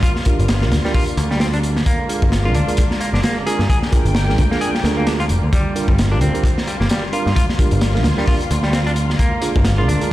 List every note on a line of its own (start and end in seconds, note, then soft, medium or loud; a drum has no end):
0.00 9.15 D3 medium
0.00 1.82 G3 medium
0.00 9.15 A#3 medium
0.00 1.83 F4 medium
0.00 0.11 F4 medium
0.00 kick loud
0.00 closed hi-hat medium
0.16 snare soft
0.25 0.48 D4 medium
0.25 0.48 F4 medium
0.25 0.48 G4 medium
0.25 0.48 A#4 medium
0.25 kick medium
0.25 closed hi-hat medium
0.39 0.72 G1 loud
0.39 closed hi-hat soft
0.48 snare loud
0.48 closed hi-hat medium
0.62 0.74 D4 medium
0.62 0.74 F4 medium
0.62 0.74 G4 medium
0.62 0.74 A#4 medium
0.62 snare medium
0.72 0.81 D2 medium
0.72 snare loud
0.72 closed hi-hat medium
0.85 0.91 G3 medium
0.85 1.06 D4 medium
0.85 1.06 F4 medium
0.85 1.06 G4 medium
0.85 1.06 A#4 loud
0.85 snare medium
0.94 1.03 F4 medium
0.94 kick loud
0.94 open hi-hat medium
1.08 closed hi-hat soft
1.17 1.81 D2 loud
1.17 closed hi-hat medium
1.31 1.40 G3 medium
1.31 snare soft
1.40 1.46 C4 medium
1.40 snare loud
1.40 closed hi-hat medium
1.53 1.57 D4 loud
1.53 closed hi-hat soft
1.63 closed hi-hat medium
1.77 snare medium
1.86 5.49 G#3 medium
1.86 2.31 A#3 medium
1.86 3.67 F4 medium
1.86 kick loud
1.86 closed hi-hat medium
2.09 2.24 D4 medium
2.09 2.24 F4 medium
2.09 2.24 G#4 medium
2.09 2.24 A#4 loud
2.09 closed hi-hat medium
2.22 2.55 G1 loud
2.22 kick medium
2.32 snare loud
2.32 closed hi-hat medium
2.45 2.57 D4 medium
2.45 2.55 F4 medium
2.45 2.57 F4 medium
2.45 2.57 G#4 medium
2.45 2.57 A#4 medium
2.54 2.64 D2 medium
2.54 3.00 D4 medium
2.54 closed hi-hat medium
2.68 2.80 D4 medium
2.68 2.80 F4 medium
2.68 2.80 G#4 medium
2.68 2.80 A#4 loud
2.68 closed hi-hat soft
2.77 kick loud
2.77 closed hi-hat medium
2.91 snare soft
3.00 3.09 A#3 medium
3.00 closed hi-hat medium
3.13 3.20 G1 medium
3.13 3.20 D4 medium
3.13 snare soft
3.23 3.36 A#3 medium
3.23 snare loud
3.23 closed hi-hat medium
3.47 3.62 D4 medium
3.47 3.62 F4 medium
3.47 3.68 G#4 medium
3.47 3.62 G#4 medium
3.47 3.62 A#4 loud
3.47 closed hi-hat medium
3.59 3.66 G2 medium
3.59 snare soft
3.69 3.78 G#4 medium
3.69 5.51 G5 loud
3.69 kick loud
3.69 closed hi-hat medium
3.82 snare medium
3.92 4.14 D4 medium
3.92 4.14 F4 medium
3.92 4.14 G#4 medium
3.92 4.14 A#4 loud
3.92 kick loud
3.92 closed hi-hat medium
4.05 4.38 G1 loud
4.05 closed hi-hat soft
4.15 snare loud
4.15 closed hi-hat medium
4.28 4.41 D4 medium
4.28 4.41 F4 medium
4.28 4.41 G#4 medium
4.28 4.41 A#4 medium
4.28 snare medium
4.38 4.47 D2 medium
4.38 kick loud
4.38 closed hi-hat medium
4.51 4.58 A#3 medium
4.51 4.73 D4 medium
4.51 4.73 F4 medium
4.51 4.73 G#4 medium
4.51 4.73 A#4 loud
4.51 snare soft
4.61 4.69 G#4 medium
4.61 closed hi-hat medium
4.75 snare soft
4.84 5.31 D2 loud
4.84 4.95 D4 medium
4.84 4.95 F4 medium
4.84 4.95 G#4 medium
4.84 4.95 A#4 medium
4.84 snare medium
4.84 closed hi-hat medium
4.97 5.06 A#3 medium
4.97 5.19 D4 medium
4.97 5.19 F4 medium
4.97 5.19 G#4 medium
4.97 5.19 A#4 medium
5.07 5.12 D4 medium
5.07 snare loud
5.07 closed hi-hat medium
5.20 5.24 F4 loud
5.20 closed hi-hat soft
5.29 5.39 F1 medium
5.29 closed hi-hat medium
5.43 5.50 D2 medium
5.53 5.98 G3 medium
5.53 9.16 G3 medium
5.53 10.13 F4 medium
5.53 kick loud
5.53 closed hi-hat medium
5.76 5.91 D4 medium
5.76 5.91 F4 medium
5.76 5.91 G4 medium
5.76 5.91 A#4 loud
5.76 closed hi-hat medium
5.88 6.22 G1 loud
5.88 kick medium
5.98 snare loud
5.98 closed hi-hat medium
6.12 6.21 D4 medium
6.12 6.24 D4 medium
6.12 6.24 F4 medium
6.12 6.24 G4 medium
6.12 6.24 A#4 medium
6.21 6.30 D2 medium
6.21 6.66 C4 medium
6.21 closed hi-hat medium
6.34 6.47 D4 medium
6.34 6.47 F4 medium
6.34 6.46 G4 medium
6.34 6.47 A#4 loud
6.34 closed hi-hat soft
6.44 kick loud
6.44 closed hi-hat medium
6.58 snare medium
6.67 6.76 G3 medium
6.67 closed hi-hat medium
6.80 6.87 G1 medium
6.80 6.87 A#3 medium
6.80 snare soft
6.89 7.03 G3 medium
6.89 snare loud
6.89 closed hi-hat medium
7.13 7.28 D4 medium
7.13 7.28 F4 medium
7.13 7.35 F4 medium
7.13 7.28 G4 medium
7.13 7.28 A#4 loud
7.13 closed hi-hat medium
7.26 7.33 G2 medium
7.26 snare soft
7.36 7.44 F4 medium
7.36 kick loud
7.36 closed hi-hat medium
7.49 snare soft
7.59 7.81 D4 medium
7.59 7.81 F4 medium
7.59 7.81 G4 medium
7.59 7.81 A#4 medium
7.59 kick loud
7.59 closed hi-hat medium
7.71 8.05 G1 loud
7.71 closed hi-hat soft
7.81 snare loud
7.81 closed hi-hat medium
7.95 8.07 D4 medium
7.95 8.07 F4 medium
7.95 8.07 G4 medium
7.95 8.07 A#4 medium
7.95 snare medium
8.04 8.13 D2 medium
8.04 snare loud
8.04 closed hi-hat medium
8.18 8.24 G3 medium
8.18 8.39 D4 medium
8.18 8.39 F4 medium
8.18 8.39 G4 medium
8.18 8.39 A#4 loud
8.18 snare soft
8.27 8.36 F4 medium
8.27 kick loud
8.27 open hi-hat medium
8.41 closed hi-hat soft
8.51 9.14 D2 loud
8.51 closed hi-hat medium
8.63 8.72 G3 medium
8.63 snare soft
8.73 8.79 C4 medium
8.73 snare loud
8.73 closed hi-hat medium
8.87 8.90 D4 loud
8.87 closed hi-hat soft
8.96 closed hi-hat medium
9.10 snare medium
9.19 10.13 D3 medium
9.19 10.13 G#3 medium
9.19 9.64 A#3 medium
9.19 10.13 A#3 medium
9.19 kick loud
9.19 closed hi-hat medium
9.42 9.57 D4 loud
9.42 9.57 F4 medium
9.42 9.57 G#4 medium
9.42 9.57 A#4 loud
9.42 closed hi-hat medium
9.56 9.88 G1 loud
9.56 kick medium
9.65 snare loud
9.65 closed hi-hat medium
9.78 9.90 D4 medium
9.78 9.90 F4 medium
9.78 9.87 F4 medium
9.78 9.90 G#4 medium
9.78 9.90 A#4 loud
9.88 9.97 D2 medium
9.88 10.13 D4 medium
9.88 closed hi-hat medium
10.01 10.13 D4 medium
10.01 10.13 F4 medium
10.01 10.13 G#4 medium
10.01 10.13 A#4 loud
10.01 closed hi-hat soft